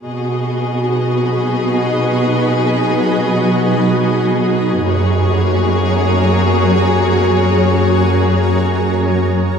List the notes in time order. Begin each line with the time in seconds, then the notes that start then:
0.05 B2 F#3 B3 D#4 F#4 G#4 B4 D#5
4.85 F#2 F#3 A#3 C#4 F#4 G#4 A#4 C#5